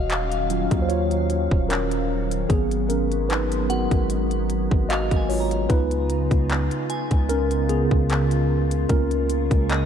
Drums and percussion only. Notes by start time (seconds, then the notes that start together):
0.10 clap, closed hi-hat
0.32 closed hi-hat
0.50 closed hi-hat
0.71 kick, closed hi-hat
0.90 closed hi-hat
1.11 closed hi-hat
1.30 closed hi-hat
1.51 kick
1.70 clap, closed hi-hat
1.91 closed hi-hat
2.31 closed hi-hat
2.50 kick, closed hi-hat
2.71 closed hi-hat
2.90 closed hi-hat
3.12 closed hi-hat
3.30 clap, closed hi-hat
3.52 closed hi-hat
3.70 closed hi-hat
3.91 kick, closed hi-hat
4.10 closed hi-hat
4.31 closed hi-hat
4.50 closed hi-hat
4.71 kick
4.90 clap, closed hi-hat
5.11 kick, closed hi-hat
5.30 open hi-hat
5.51 closed hi-hat
5.70 kick, closed hi-hat
5.91 closed hi-hat
6.10 closed hi-hat
6.31 kick, closed hi-hat
6.50 clap, closed hi-hat
6.71 closed hi-hat
6.90 closed hi-hat
7.11 kick, closed hi-hat
7.29 closed hi-hat
7.51 closed hi-hat
7.69 closed hi-hat
7.91 kick
8.10 clap, closed hi-hat
8.31 closed hi-hat
8.71 closed hi-hat
8.89 kick, closed hi-hat
9.11 closed hi-hat
9.30 closed hi-hat
9.51 kick, closed hi-hat
9.70 clap, closed hi-hat